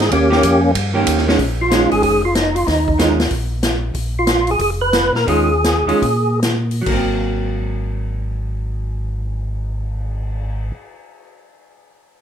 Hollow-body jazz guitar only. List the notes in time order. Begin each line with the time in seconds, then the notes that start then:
0.30 D#3 A#3 C#4 G4
0.94 D#3 A#3 C#4 G4
1.28 D#3 G#3 C#4
1.71 D#3 G#3 C#4
2.98 D#3 G#3 C#4 F4
5.27 D#3 G#3 C#4 F4
5.87 D#3 G#3 C#4 F4
6.81 F#3
6.88 A#3
6.94 C4